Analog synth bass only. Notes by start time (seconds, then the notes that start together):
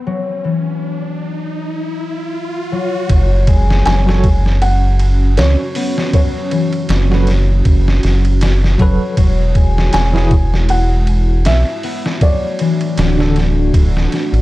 3.10 F#1
3.86 F#1
5.38 C#2
6.89 F#1
7.66 F#1
8.04 F#1
8.80 F#1
9.17 E1
9.94 E1
11.46 B1
12.98 D1
13.74 D1
14.33 A1